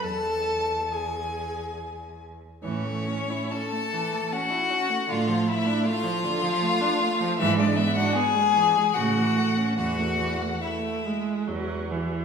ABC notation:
X:1
M:3/4
L:1/16
Q:1/4=73
K:A
V:1 name="Violin"
A4 G6 z2 | c4 a4 f4 | =f2 e2 f8 | e d e f g4 f4 |
f4 e4 z4 |]
V:2 name="Violin"
a4 g6 z2 | C4 A4 F4 | =F2 E2 F8 | E D E F G4 F4 |
F4 E4 z4 |]
V:3 name="Viola"
A4 G6 z2 | E, A, C E C A, E, A, C E C A, | D, =F, A, D A, F, D, F, A, D A, F, | E, G, B, D B, G, E, G, C, E, A, C |
E, A, E, A, A,2 G,2 F,2 E,2 |]
V:4 name="Cello" clef=bass
E,,8- E,,3 z | A,,4 z8 | A,,4 z8 | G,,4 z4 A,,4 |
E,,4 z4 E,,4 |]